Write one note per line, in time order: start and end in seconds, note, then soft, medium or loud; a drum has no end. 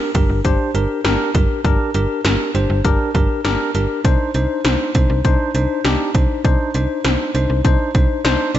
0.15 0.27 G1 loud
0.15 0.40 D4 medium
0.15 0.40 G4 medium
0.15 0.40 A#4 medium
0.15 kick medium
0.15 closed hi-hat medium
0.30 0.42 G1 medium
0.45 0.57 G1 loud
0.45 0.70 D4 loud
0.45 0.70 G4 medium
0.45 0.70 C5 loud
0.45 kick medium
0.45 closed hi-hat medium
0.75 0.87 G1 medium
0.75 1.00 D4 medium
0.75 1.00 G4 medium
0.75 1.00 A#4 medium
0.75 closed hi-hat medium
1.05 1.17 G1 medium
1.05 1.30 D4 loud
1.05 1.30 G4 medium
1.05 1.30 A#4 loud
1.05 snare loud
1.05 closed hi-hat medium
1.35 1.47 G1 loud
1.35 1.60 D4 medium
1.35 1.60 G4 medium
1.35 1.60 A#4 medium
1.35 kick loud
1.35 closed hi-hat medium
1.65 1.77 G1 loud
1.65 1.90 D4 loud
1.65 1.90 G4 medium
1.65 1.90 A#4 loud
1.65 kick loud
1.65 closed hi-hat medium
1.94 2.07 G1 loud
1.94 2.20 D4 medium
1.94 2.20 G4 medium
1.94 2.20 A#4 medium
1.94 closed hi-hat medium
2.25 2.37 G1 loud
2.25 2.50 D4 medium
2.25 2.50 G4 medium
2.25 2.50 A#4 medium
2.25 snare loud
2.25 closed hi-hat medium
2.55 2.67 G1 loud
2.55 2.80 D4 medium
2.55 2.80 G4 medium
2.55 2.80 C5 medium
2.55 closed hi-hat medium
2.70 2.82 G1 loud
2.85 2.97 G1 loud
2.85 3.10 D4 loud
2.85 3.10 G4 loud
2.85 3.10 A#4 loud
2.85 kick medium
2.85 closed hi-hat medium
3.15 3.27 G1 loud
3.15 3.40 D4 medium
3.15 3.40 G4 medium
3.15 3.40 A#4 medium
3.15 kick medium
3.15 closed hi-hat medium
3.45 3.57 G1 medium
3.45 3.70 D4 loud
3.45 3.70 G4 loud
3.45 3.70 A#4 loud
3.45 snare loud
3.45 closed hi-hat medium
3.75 3.87 G1 loud
3.75 4.00 D4 medium
3.75 4.00 G4 medium
3.75 4.00 A#4 medium
3.75 closed hi-hat medium
4.05 4.17 C2 loud
4.05 4.30 D4 loud
4.05 4.30 D#4 medium
4.05 4.30 C5 loud
4.05 kick loud
4.05 closed hi-hat medium
4.34 4.47 C2 loud
4.34 4.60 D4 medium
4.34 4.60 D#4 medium
4.34 4.60 C5 medium
4.34 closed hi-hat medium
4.65 4.77 C2 medium
4.65 4.90 D4 medium
4.65 4.90 D#4 medium
4.65 4.90 C5 medium
4.65 snare loud
4.65 closed hi-hat medium
4.95 5.07 C2 loud
4.95 5.20 D4 medium
4.95 5.20 D#4 medium
4.95 5.20 C5 medium
4.95 kick medium
4.95 closed hi-hat medium
5.10 5.22 C2 medium
5.25 5.37 C2 loud
5.25 5.50 D4 loud
5.25 5.50 D#4 medium
5.25 5.50 C5 loud
5.25 kick medium
5.25 closed hi-hat medium
5.55 5.67 C2 loud
5.55 5.80 D4 medium
5.55 5.80 D#4 medium
5.55 5.80 C5 medium
5.55 closed hi-hat medium
5.85 5.97 C2 loud
5.85 6.10 D4 loud
5.85 6.10 D#4 loud
5.85 6.10 G4 loud
5.85 snare loud
5.85 closed hi-hat medium
6.15 6.27 C2 medium
6.15 6.40 D4 medium
6.15 6.40 D#4 medium
6.15 6.40 C5 medium
6.15 kick loud
6.15 closed hi-hat medium
6.45 6.57 C2 loud
6.45 6.70 D4 loud
6.45 6.70 D#4 loud
6.45 6.70 C5 loud
6.45 kick loud
6.45 closed hi-hat medium
6.74 6.87 C2 loud
6.74 7.00 D4 medium
6.74 7.00 D#4 medium
6.74 7.00 C5 medium
6.74 closed hi-hat medium
7.04 7.17 C2 medium
7.04 7.30 D4 medium
7.04 7.30 D#4 medium
7.04 7.30 C5 medium
7.04 snare loud
7.04 closed hi-hat medium
7.35 7.47 C2 loud
7.35 7.60 D4 medium
7.35 7.60 D#4 medium
7.35 7.60 C5 medium
7.35 closed hi-hat medium
7.50 7.62 C2 medium
7.65 7.77 C2 loud
7.65 7.90 D4 loud
7.65 7.90 D#4 loud
7.65 7.90 C5 loud
7.65 kick medium
7.65 closed hi-hat medium
7.95 8.07 C2 medium
7.95 8.20 D4 medium
7.95 8.20 D#4 medium
7.95 8.20 C5 medium
7.95 kick medium
7.95 closed hi-hat medium
8.25 8.37 C2 medium
8.25 8.50 D4 loud
8.25 8.50 D#4 loud
8.25 8.50 C5 loud
8.25 snare loud
8.25 closed hi-hat medium
8.55 8.59 C2 loud
8.55 8.59 D4 medium
8.55 8.59 D#4 medium
8.55 8.59 D5 medium
8.55 closed hi-hat medium